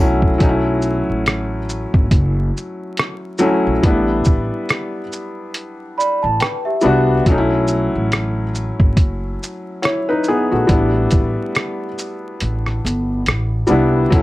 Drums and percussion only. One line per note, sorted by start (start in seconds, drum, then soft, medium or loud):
0.22 kick medium
0.40 kick medium
0.40 closed hi-hat medium
0.82 shaker soft
1.26 cross-stick loud
1.26 closed hi-hat medium
1.69 shaker soft
1.94 kick medium
2.11 kick medium
2.11 closed hi-hat medium
2.57 shaker soft
2.97 cross-stick loud
2.97 closed hi-hat medium
3.38 shaker soft
3.83 kick loud
3.83 closed hi-hat medium
4.25 kick medium
4.25 shaker soft
4.69 cross-stick loud
4.69 closed hi-hat medium
5.12 shaker soft
5.54 closed hi-hat medium
6.00 shaker soft
6.40 cross-stick loud
6.40 closed hi-hat medium
6.81 shaker soft
7.26 kick loud
7.26 closed hi-hat medium
7.68 shaker soft
8.12 cross-stick loud
8.12 closed hi-hat medium
8.55 shaker soft
8.80 kick medium
8.97 kick medium
8.97 closed hi-hat medium
9.43 shaker soft
9.83 cross-stick loud
9.83 closed hi-hat medium
10.24 shaker soft
10.69 kick loud
10.69 closed hi-hat medium
11.11 kick medium
11.11 closed hi-hat soft
11.11 shaker soft
11.55 cross-stick loud
11.55 closed hi-hat medium
11.98 shaker soft
12.40 closed hi-hat medium
12.66 cross-stick soft
12.86 closed hi-hat soft
12.86 shaker medium
13.26 cross-stick loud
13.26 closed hi-hat medium
13.67 shaker soft
14.12 kick loud
14.12 closed hi-hat medium